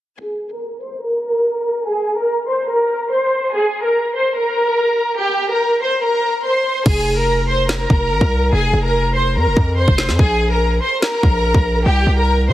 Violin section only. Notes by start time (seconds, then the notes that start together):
0.19 G#4 G#5
0.50 A#4 A#5
0.82 C5 C6
1.02 A#4 A#5
1.86 G#4 G#5
2.17 A#4 A#5
2.48 C5 C6
2.69 A#4 A#5
3.11 C5 C6
3.52 G#4 G#5
3.83 A#4 A#5
4.15 C5 C6
4.36 A#4 A#5
5.19 G4 G5
5.50 A#4 A#5
5.82 C5 C6
6.03 A#4 A#5
6.44 C5 C6
6.86 G#4 G#5
7.17 A#4 A#5
7.48 C5 C6
7.69 A#4 A#5
8.53 G#4 G#5
8.83 A#4 A#5
9.15 C5 C6
9.36 A#4 A#5
9.77 C5 C6
10.19 G#4 G#5
10.50 A#4 A#5
10.82 C5 C6
11.02 A#4 A#5
11.86 G4 G5
12.17 A#4 A#5
12.49 C5 C6